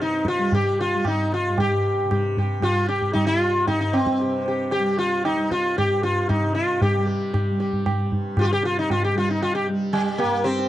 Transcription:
Already playing: G2 C3 G3
0.02 D#4
0.11 tabla te
0.25 F4, tabla ke
0.37 G3, tabla te
0.52 G4, tabla tin, tabla ge
0.81 F4
0.94 G3
1.05 D#4, tabla na, tabla ge
1.32 F4, tabla te
1.49 G2
1.58 G4, tabla tin, tabla ge
2.04 C3
2.11 G4, tabla na, tabla ge
2.37 G4, tabla ge
2.59 G3, tabla na, tabla ge
2.63 F4
2.88 G4, tabla te
3.02 tabla ge
3.13 G3 D#4, tabla na, tabla ge
3.27 F4
3.67 G2 D#4, tabla tin, tabla ge
3.81 D#4
3.93 C4, tabla na
4.07 tabla ke
4.19 C3 G4, tabla tin
4.46 G4, tabla na
4.71 G4, tabla na
4.79 G3
4.98 F4
5.25 D#4, tabla na
5.35 G3
5.51 F4, tabla ke
5.78 G4, tabla na, tabla ge
5.88 G2
6.03 F4, tabla te
6.29 D#4, tabla na, tabla ge
6.39 C3
6.55 F4, tabla te
6.82 G4, tabla tin, tabla ge
6.97 G3
7.07 G4
7.33 G4, tabla na, tabla ge
7.51 G3
7.60 G4, tabla te
7.73 tabla ge
7.86 G4, tabla na, tabla ge
8.06 G2
8.12 tabla ge
8.37 F4, tabla na, tabla ge
8.41 F4 G4
8.53 C3 G4
8.63 F4, tabla te
8.79 D#4
8.90 F4, tabla tin, tabla ge
9.04 G4
9.14 G3 F4
9.30 D#4
9.42 F4, tabla tin
9.55 G4
9.68 G3
9.93 G3 G4, tabla na
10.18 A#3 G4, tabla na
10.23 G2
10.44 C4 G4, tabla te
10.59 tabla te

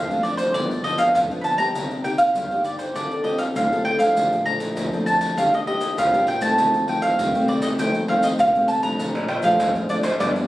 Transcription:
Already playing: F2 F5
0.10 F3 A3 D4, pandeiro, maracas
0.23 D5, pandeiro
0.37 C5, pandeiro, maracas
0.54 G2 F3 B3 D4 D5, pandeiro, maracas, surdo
0.71 pandeiro, maracas
0.84 F3 B3 D4 D#5, pandeiro
0.98 F5, pandeiro, maracas
1.15 D3 F5, pandeiro, maracas, surdo
1.30 F3 B3 D4, pandeiro, maracas
1.41 A5 B5, pandeiro, maracas
1.58 A#3 D#4 G4 A#5, pandeiro, maracas
1.75 C3, pandeiro, maracas, surdo
1.91 pandeiro, maracas
2.04 A#3 D#4 G4 G5, pandeiro, maracas
2.18 F5, pandeiro, maracas
2.35 G2, pandeiro, maracas, surdo
2.51 A#3 D#4 G4, pandeiro, maracas
2.64 D5, pandeiro, maracas
2.79 C5, pandeiro, maracas
2.95 D3 C4 F4 A4 D5, pandeiro, maracas, surdo
3.11 pandeiro, maracas
3.24 C4 F4 A4 D#5, pandeiro
3.38 F5, pandeiro, maracas
3.56 A2 F5, pandeiro, maracas, surdo
3.72 C4 F4 A4, pandeiro, maracas
3.85 G5, pandeiro
3.99 F3 A3 D4 F5, pandeiro, maracas
4.16 A#2, pandeiro, maracas, surdo
4.33 pandeiro, maracas
4.45 F3 A3 D4 A#5, pandeiro
4.60 pandeiro, maracas
4.77 F2, pandeiro, maracas, surdo
4.92 F3 A3 D4, pandeiro, maracas
5.06 A5, pandeiro, maracas, surdo
5.21 pandeiro, maracas
5.37 D#3 A#3 D4 G4 F5, pandeiro, maracas, surdo
5.54 D#5, pandeiro, maracas
5.67 A#3 D4 G4 D#5, pandeiro
5.81 pandeiro, maracas
5.98 A#2 F5, pandeiro, maracas, surdo
6.13 A#3 D4 G4, pandeiro, maracas
6.27 G5, pandeiro
6.41 D#3 A3 C4 A5, pandeiro, maracas
6.58 F2, pandeiro, maracas, surdo
6.74 pandeiro, maracas
6.87 D#3 A3 C4 G5, pandeiro
7.02 F5, pandeiro, maracas
7.18 C3, pandeiro, maracas, surdo
7.34 D#3 A3 C4, pandeiro, maracas
7.48 D5, pandeiro, surdo
7.62 D#5, pandeiro, maracas
7.79 F2 D#3 A3 C4 G5, pandeiro, maracas, surdo
7.94 pandeiro, maracas
8.08 D#3 A3 C4 F5, pandeiro
8.23 D#5, pandeiro, maracas
8.39 C3 F5, pandeiro, maracas, surdo
8.55 D#3 A3 C4, pandeiro, maracas
8.68 A5, pandeiro, maracas
8.83 F3 A3 D4 A#5, pandeiro, maracas
9.00 A#2, pandeiro, maracas, surdo
9.15 pandeiro, tamborim, maracas
9.28 G5, pandeiro, tamborim
9.43 F3 A3 D4 F5, pandeiro, maracas, surdo
9.60 F2 G#2, pandeiro, tamborim, maracas, surdo
9.75 pandeiro, maracas
9.89 F3 A3 D4 D5, pandeiro, maracas, surdo
10.03 C5, pandeiro, tamborim, maracas, surdo
10.20 G2 F3 B3 D4 D5, pandeiro, tamborim, maracas, surdo
10.36 pandeiro, maracas

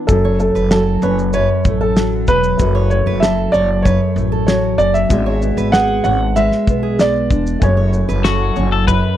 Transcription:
Already playing: E3 B3 D4
0.07 F#1 F#2 C#4 F#4 A4, kick, shaker
0.12 A4
0.25 C#5
0.40 A3 A4, shaker
0.55 F#1 B4, shaker
0.71 F#3 A4, snare, shaker
1.02 F#1 C#4 B4 C#5, shaker
1.19 shaker
1.33 F#2 B4 C#5, shaker
1.65 A1 A3, kick, shaker
1.81 A4
1.96 F#3, snare, shaker
2.27 E1 C#4 B4, kick, shaker
2.44 shaker
2.57 F#1 F#2 A3 F#4, kick, shaker
2.61 B4
2.75 C#5
2.90 A3 C#5, shaker
3.06 F#1 B4
3.20 F#3 A4 E5, snare, shaker
3.52 F#1 C#5 D5, shaker
3.82 F#2 B4 C#5, kick, shaker
4.16 A1 A3, shaker
4.32 A4
4.47 F#3 C#5, snare, shaker
4.78 F#1 C#4 D5, shaker
4.94 E5, shaker
5.09 G#1 G#3 B3 D4 F#4 G#4 D5, kick, shaker
5.26 C#5
5.42 B3, shaker
5.57 G#1 B4, shaker
5.72 B3 G#4 F#5, snare, shaker
6.04 G#1 D4 C#5 F#5, shaker
6.36 G#3 B4 E5, shaker
6.51 snare
6.67 B1 B3, kick, shaker
6.83 G#4
6.99 B3 D5, snare, shaker
7.30 E1 D4, kick, shaker
7.47 shaker
7.60 F#1 F#2 A3 C#4 F#4 C#5 G#5, kick, shaker
7.77 C#5
7.93 A3, shaker
8.08 F#1 B4, shaker
8.24 F#3 F#4 A4, snare, shaker
8.56 F#1 C#4 C#5, shaker
8.72 A4
8.88 F#2 B4, kick, shaker

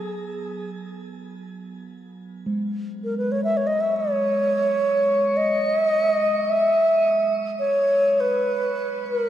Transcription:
Already playing: F#3 B3 G#4
2.46 G#3
3.04 A#4
3.18 B4
3.32 C#5
3.44 E5
3.57 C#5
3.67 D#5
3.81 E5
3.96 C#5
5.37 D#5
6.50 E5
7.59 C#5
8.20 B4
9.06 B4
9.17 A#4

